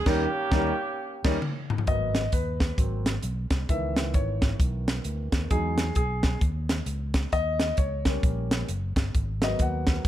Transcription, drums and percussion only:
0.06 kick loud
0.06 snare loud
0.06 crash medium
0.52 kick loud
0.52 snare loud
1.25 kick loud
1.25 snare loud
1.25 crash medium
1.42 mid tom medium
1.70 floor tom loud
1.78 floor tom loud
1.87 kick medium
1.87 closed hi-hat medium
2.15 snare loud
2.15 closed hi-hat medium
2.32 kick medium
2.32 closed hi-hat medium
2.60 kick medium
2.60 snare medium
2.60 closed hi-hat soft
2.78 kick medium
2.78 closed hi-hat medium
3.06 snare loud
3.06 closed hi-hat medium
3.23 closed hi-hat medium
3.50 kick medium
3.50 snare loud
3.50 closed hi-hat medium
3.69 kick medium
3.69 closed hi-hat medium
3.96 snare loud
3.96 closed hi-hat medium
4.14 kick medium
4.14 closed hi-hat medium
4.42 kick medium
4.42 snare medium
4.42 closed hi-hat soft
4.60 kick loud
4.60 closed hi-hat medium
4.88 snare loud
4.88 closed hi-hat medium
5.04 closed hi-hat medium
5.32 kick medium
5.32 snare loud
5.32 closed hi-hat medium
5.51 kick medium
5.51 closed hi-hat medium
5.78 snare loud
5.78 closed hi-hat medium
5.95 kick medium
5.95 closed hi-hat medium
6.23 kick medium
6.23 snare loud
6.23 closed hi-hat soft
6.41 kick loud
6.41 closed hi-hat medium
6.69 snare loud
6.69 closed hi-hat medium
6.86 closed hi-hat medium
7.14 kick medium
7.14 snare loud
7.14 closed hi-hat medium
7.32 kick medium
7.32 closed hi-hat medium
7.60 snare loud
7.60 closed hi-hat medium
7.77 kick medium
7.77 closed hi-hat medium
8.05 kick medium
8.05 snare loud
8.05 closed hi-hat soft
8.23 kick loud
8.23 closed hi-hat medium
8.51 snare loud
8.51 closed hi-hat medium
8.68 closed hi-hat medium
8.96 kick loud
8.96 snare loud
8.96 closed hi-hat medium
9.15 kick medium
9.15 closed hi-hat medium
9.42 snare loud
9.42 closed hi-hat medium
9.59 kick medium
9.59 closed hi-hat medium
9.87 kick medium
9.87 snare loud
9.87 closed hi-hat soft
10.05 kick loud

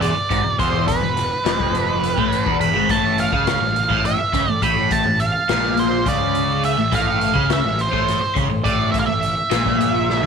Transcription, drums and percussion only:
0.02 closed hi-hat loud
0.30 kick medium
0.30 closed hi-hat medium
0.59 kick loud
0.59 closed hi-hat medium
0.88 kick loud
0.88 closed hi-hat medium
1.17 snare soft
1.17 closed hi-hat medium
1.46 snare loud
1.46 closed hi-hat medium
1.60 kick loud
1.75 closed hi-hat medium
2.04 closed hi-hat medium
2.18 kick loud
2.32 closed hi-hat medium
2.46 kick loud
2.61 closed hi-hat medium
2.89 kick loud
2.89 closed hi-hat medium
3.18 closed hi-hat medium
3.32 kick loud
3.47 snare loud
3.47 closed hi-hat medium
3.76 closed hi-hat medium
3.90 kick loud
4.05 closed hi-hat medium
4.33 kick medium
4.33 closed hi-hat medium
4.62 kick loud
4.62 closed hi-hat medium
4.91 kick loud
4.91 closed hi-hat loud
5.20 closed hi-hat medium
5.49 snare loud
5.49 closed hi-hat medium
5.77 closed hi-hat medium
6.06 kick medium
6.06 closed hi-hat medium
6.35 closed hi-hat medium
6.64 closed hi-hat medium
6.92 kick loud
6.92 closed hi-hat medium
7.21 closed hi-hat medium
7.36 kick loud
7.50 snare loud
7.50 closed hi-hat medium
7.79 closed hi-hat medium
7.93 kick medium
8.08 snare soft
8.08 closed hi-hat medium
8.36 kick loud
8.36 closed hi-hat medium
8.65 kick loud
8.65 closed hi-hat medium
8.94 kick loud
8.94 closed hi-hat medium
9.23 closed hi-hat medium
9.51 snare loud
9.51 closed hi-hat loud
9.66 kick medium
9.81 closed hi-hat medium
10.10 snare medium

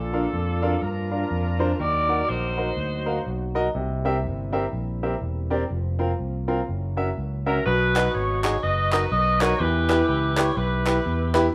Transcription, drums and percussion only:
7.96 clap loud
8.44 clap loud
8.93 clap loud
9.41 clap medium
9.90 clap medium
10.37 clap loud
10.87 clap loud
11.35 clap medium

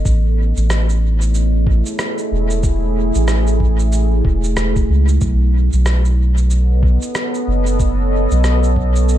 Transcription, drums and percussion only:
0.05 kick loud
0.05 shaker soft
0.57 shaker soft
0.70 cross-stick medium
0.70 shaker soft
0.89 shaker soft
1.21 shaker soft
1.34 shaker soft
1.67 kick loud
1.86 shaker soft
1.99 cross-stick medium
1.99 shaker medium
2.18 shaker soft
2.50 shaker soft
2.63 kick loud
2.63 shaker soft
3.15 shaker soft
3.28 cross-stick medium
3.28 shaker soft
3.47 shaker soft
3.60 kick medium
3.79 shaker soft
3.92 shaker soft
4.25 kick loud
4.44 shaker soft
4.57 cross-stick medium
4.57 shaker soft
4.76 kick loud
4.76 shaker soft
5.08 shaker soft
5.21 kick loud
5.21 shaker soft
5.73 shaker soft
5.86 cross-stick medium
5.86 shaker soft
6.05 shaker soft
6.37 shaker soft
6.50 shaker soft
6.83 kick medium
7.02 shaker soft
7.15 cross-stick medium
7.15 shaker soft
7.34 shaker soft
7.67 shaker soft
7.80 kick loud
7.80 shaker soft
8.31 shaker soft
8.44 cross-stick medium
8.44 shaker soft
8.63 shaker soft
8.76 kick medium
8.96 shaker soft
9.09 shaker soft

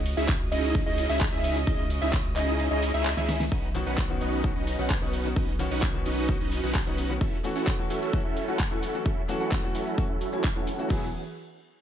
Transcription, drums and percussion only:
0.06 open hi-hat loud
0.06 ride medium
0.06 shaker medium
0.17 shaker soft
0.29 kick loud
0.29 clap loud
0.29 ride medium
0.29 shaker soft
0.52 open hi-hat loud
0.52 ride medium
0.52 shaker medium
0.63 shaker soft
0.75 kick loud
0.75 ride medium
0.75 shaker soft
0.98 open hi-hat loud
0.98 ride medium
0.98 shaker medium
1.09 shaker soft
1.21 kick loud
1.21 clap loud
1.21 ride medium
1.21 shaker soft
1.44 open hi-hat loud
1.44 ride medium
1.44 shaker medium
1.56 shaker soft
1.67 kick loud
1.67 ride medium
1.67 shaker soft
1.90 open hi-hat loud
1.90 ride medium
1.90 shaker medium
2.02 shaker soft
2.13 kick loud
2.13 clap loud
2.13 ride medium
2.13 shaker soft
2.36 clap medium
2.36 open hi-hat loud
2.36 ride medium
2.36 shaker medium
2.48 shaker soft
2.60 ride medium
2.60 shaker soft
2.83 open hi-hat loud
2.83 ride medium
2.83 shaker medium
2.94 shaker soft
3.05 clap loud
3.05 ride medium
3.05 shaker soft
3.17 snare medium
3.29 snare medium
3.29 open hi-hat loud
3.29 ride medium
3.29 shaker medium
3.40 snare medium
3.40 shaker soft
3.52 kick loud
3.52 shaker soft
3.75 open hi-hat loud
3.75 shaker medium
3.86 shaker soft
3.98 kick loud
3.98 clap loud
3.98 shaker soft
4.21 open hi-hat loud
4.21 shaker medium
4.33 shaker soft
4.44 kick loud
4.44 shaker soft
4.67 open hi-hat loud
4.67 shaker medium
4.79 shaker soft
4.90 kick loud
4.90 clap loud
4.90 shaker soft
5.13 open hi-hat loud
5.13 shaker medium
5.25 shaker soft
5.36 kick loud
5.36 shaker soft
5.59 open hi-hat loud
5.59 shaker medium
5.71 shaker soft
5.82 kick loud
5.82 clap loud
5.82 shaker soft
6.06 open hi-hat loud
6.06 shaker medium
6.17 shaker soft
6.29 kick loud
6.29 shaker soft
6.52 open hi-hat loud
6.52 shaker medium
6.63 shaker soft
6.75 kick loud
6.75 clap loud
6.75 shaker soft
6.98 open hi-hat loud
6.98 shaker medium
7.10 shaker soft
7.21 kick loud
7.21 shaker soft
7.44 open hi-hat loud
7.44 shaker medium
7.56 shaker soft
7.67 kick loud
7.67 clap loud
7.67 shaker soft
7.90 open hi-hat loud
7.90 shaker medium
8.02 shaker soft
8.13 kick loud
8.13 shaker soft
8.37 open hi-hat loud
8.37 shaker medium
8.48 shaker soft
8.59 kick loud
8.59 clap loud
8.59 shaker soft
8.83 open hi-hat loud
8.83 shaker medium
8.94 shaker soft
9.06 kick loud
9.06 shaker soft
9.29 open hi-hat loud
9.29 shaker medium
9.40 shaker soft
9.52 kick loud
9.52 clap loud
9.52 shaker soft
9.75 open hi-hat loud
9.75 shaker medium
9.86 shaker soft
9.98 kick loud
9.98 shaker soft
10.21 open hi-hat loud
10.21 shaker medium
10.33 shaker soft
10.44 kick loud
10.44 clap loud
10.44 shaker soft
10.67 open hi-hat loud
10.67 shaker medium
10.79 shaker soft
10.90 kick loud
10.90 crash medium

